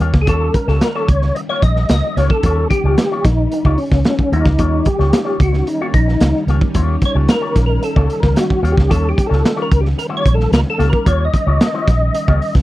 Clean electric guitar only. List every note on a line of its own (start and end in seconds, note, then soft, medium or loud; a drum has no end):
0.00 0.20 A#3 medium
0.00 0.14 F4 medium
0.00 0.13 G4 loud
0.00 0.13 C#5 medium
0.14 muted clean electric guitar stroke soft
0.27 0.47 A#3 medium
0.27 0.47 F4 medium
0.27 0.47 G4 medium
0.27 0.48 C#5 loud
0.55 muted clean electric guitar stroke soft
0.68 0.81 A#3 medium
0.68 0.81 F4 soft
0.68 0.82 G4 medium
0.68 0.82 C#5 medium
0.82 muted clean electric guitar stroke soft
0.95 1.08 A#3 medium
0.95 1.09 F4 medium
0.95 1.09 G4 medium
0.95 1.09 C#5 loud
1.23 muted clean electric guitar stroke soft
1.36 muted clean electric guitar stroke soft
1.49 1.63 A#3 medium
1.49 1.63 F4 medium
1.49 1.64 G4 medium
1.49 1.64 C#5 medium
1.64 muted clean electric guitar stroke soft
1.77 muted clean electric guitar stroke soft
2.03 muted clean electric guitar stroke soft
2.17 2.36 A#3 medium
2.17 2.31 F4 medium
2.17 2.31 G4 medium
2.17 2.30 C#5 medium
2.31 muted clean electric guitar stroke soft
2.45 2.63 A#3 medium
2.45 2.64 F4 medium
2.45 2.64 G4 loud
2.45 2.64 C#5 medium
2.71 muted clean electric guitar stroke soft
2.85 2.96 A#3 medium
2.85 2.97 F4 soft
2.85 2.98 G4 medium
2.85 2.98 C#5 medium
2.98 muted clean electric guitar stroke soft
3.12 3.24 A#3 medium
3.12 3.25 F4 medium
3.12 3.25 G4 medium
3.12 3.25 C#5 medium
3.25 muted clean electric guitar stroke soft
3.38 muted clean electric guitar stroke soft
3.52 muted clean electric guitar stroke soft
3.65 3.78 A#3 medium
3.65 3.78 F4 medium
3.65 3.79 G4 medium
3.65 3.79 C#5 medium
3.79 muted clean electric guitar stroke soft
3.92 muted clean electric guitar stroke medium
4.19 muted clean electric guitar stroke soft
4.32 4.52 A#3 medium
4.32 4.46 F4 medium
4.32 4.45 G4 loud
4.32 4.45 C#5 medium
4.46 muted clean electric guitar stroke soft
4.58 4.78 A#3 medium
4.58 4.79 F4 medium
4.58 4.79 G4 medium
4.58 4.79 C#5 medium
4.85 muted clean electric guitar stroke soft
4.99 5.10 A#3 soft
4.99 5.11 F4 soft
4.99 5.11 G4 medium
4.99 5.12 C#5 medium
5.12 muted clean electric guitar stroke soft
5.25 5.38 A#3 medium
5.25 5.38 F4 medium
5.25 5.38 G4 medium
5.25 5.39 C#5 medium
5.39 muted clean electric guitar stroke soft
5.53 muted clean electric guitar stroke soft
5.67 muted clean electric guitar stroke soft
5.81 5.93 A#3 medium
5.81 5.93 F4 medium
5.81 5.93 G4 medium
5.81 5.94 C#5 medium
5.94 muted clean electric guitar stroke soft
6.08 muted clean electric guitar stroke medium
6.34 muted clean electric guitar stroke medium
6.48 6.68 A#3 medium
6.48 6.61 F4 medium
6.48 6.61 G4 medium
6.48 6.60 C#5 medium
6.61 muted clean electric guitar stroke soft
6.75 6.95 A#3 loud
6.75 6.95 F4 medium
6.75 6.95 G4 loud
6.75 6.95 C#5 medium
7.02 muted clean electric guitar stroke soft
7.15 7.28 A#3 medium
7.15 7.28 F4 medium
7.15 7.29 G4 medium
7.15 7.29 C#5 medium
7.29 muted clean electric guitar stroke medium
7.41 7.54 A#3 medium
7.41 7.54 F4 medium
7.41 7.55 G4 medium
7.41 7.55 C#5 medium
7.69 muted clean electric guitar stroke soft
7.81 muted clean electric guitar stroke soft
7.96 8.09 A#3 medium
7.96 8.09 F4 medium
7.96 8.09 G4 medium
7.96 8.10 C#5 medium
8.10 muted clean electric guitar stroke soft
8.22 muted clean electric guitar stroke soft
8.49 muted clean electric guitar stroke soft
8.63 8.83 A#3 medium
8.63 8.76 F4 loud
8.63 8.76 G4 loud
8.63 8.75 C#5 loud
8.76 muted clean electric guitar stroke soft
8.89 9.09 A#3 medium
8.89 9.09 F4 loud
8.89 9.10 G4 loud
8.89 9.10 C#5 loud
9.17 muted clean electric guitar stroke soft
9.29 9.42 A#3 medium
9.29 9.42 F4 medium
9.29 9.43 G4 medium
9.29 9.43 C#5 medium
9.43 muted clean electric guitar stroke soft
9.56 9.68 A#3 medium
9.56 9.69 F4 medium
9.56 9.69 G4 medium
9.56 9.70 C#5 medium
9.70 muted clean electric guitar stroke soft
9.83 muted clean electric guitar stroke soft
9.97 muted clean electric guitar stroke soft
10.09 10.23 A#3 medium
10.09 10.23 F4 medium
10.09 10.24 G4 medium
10.09 10.23 C#5 medium
10.24 muted clean electric guitar stroke soft
10.37 muted clean electric guitar stroke medium
10.66 muted clean electric guitar stroke soft
10.78 10.98 A#3 loud
10.78 10.92 F4 loud
10.78 10.92 G4 medium
10.78 10.91 C#5 medium
10.92 muted clean electric guitar stroke soft
11.06 11.26 A#3 loud
11.06 11.26 F4 loud
11.06 11.26 G4 loud
11.06 11.27 C#5 loud
11.34 muted clean electric guitar stroke soft
11.46 11.60 A#3 medium
11.46 11.60 F4 medium
11.46 11.60 G4 medium
11.46 11.60 C#5 medium
11.61 muted clean electric guitar stroke soft
11.74 11.86 A#3 medium
11.74 11.86 F4 medium
11.74 11.87 G4 medium
11.74 11.87 C#5 medium
12.01 muted clean electric guitar stroke soft
12.14 muted clean electric guitar stroke soft
12.28 12.40 A#3 medium
12.28 12.40 F4 medium
12.28 12.41 G4 medium
12.28 12.41 C#5 medium
12.41 muted clean electric guitar stroke soft
12.55 muted clean electric guitar stroke medium